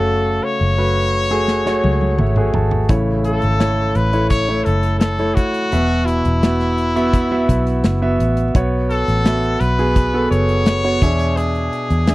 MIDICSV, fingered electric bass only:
0, 0, Header, 1, 2, 480
1, 0, Start_track
1, 0, Key_signature, 3, "major"
1, 0, Tempo, 706048
1, 50, Time_signature, 4, 2, 24, 8
1, 8259, End_track
2, 0, Start_track
2, 0, Title_t, "Fingered electric bass"
2, 0, Program_c, 0, 33
2, 0, Note_on_c, 0, 30, 69
2, 264, Note_off_c, 0, 30, 0
2, 413, Note_on_c, 0, 30, 80
2, 1224, Note_off_c, 0, 30, 0
2, 1252, Note_on_c, 0, 37, 73
2, 1474, Note_off_c, 0, 37, 0
2, 1491, Note_on_c, 0, 32, 74
2, 1714, Note_off_c, 0, 32, 0
2, 1731, Note_on_c, 0, 32, 65
2, 1953, Note_off_c, 0, 32, 0
2, 1967, Note_on_c, 0, 33, 81
2, 2303, Note_off_c, 0, 33, 0
2, 2332, Note_on_c, 0, 32, 76
2, 2666, Note_off_c, 0, 32, 0
2, 2689, Note_on_c, 0, 33, 74
2, 3142, Note_off_c, 0, 33, 0
2, 3172, Note_on_c, 0, 30, 67
2, 3624, Note_off_c, 0, 30, 0
2, 3894, Note_on_c, 0, 28, 82
2, 4226, Note_off_c, 0, 28, 0
2, 4253, Note_on_c, 0, 28, 75
2, 5064, Note_off_c, 0, 28, 0
2, 5092, Note_on_c, 0, 35, 75
2, 5314, Note_off_c, 0, 35, 0
2, 5333, Note_on_c, 0, 30, 74
2, 5555, Note_off_c, 0, 30, 0
2, 5572, Note_on_c, 0, 33, 65
2, 5794, Note_off_c, 0, 33, 0
2, 5813, Note_on_c, 0, 35, 75
2, 6146, Note_off_c, 0, 35, 0
2, 6174, Note_on_c, 0, 33, 77
2, 6506, Note_off_c, 0, 33, 0
2, 6531, Note_on_c, 0, 35, 71
2, 6983, Note_off_c, 0, 35, 0
2, 7010, Note_on_c, 0, 30, 76
2, 7462, Note_off_c, 0, 30, 0
2, 7492, Note_on_c, 0, 40, 69
2, 7943, Note_off_c, 0, 40, 0
2, 8093, Note_on_c, 0, 40, 78
2, 8259, Note_off_c, 0, 40, 0
2, 8259, End_track
0, 0, End_of_file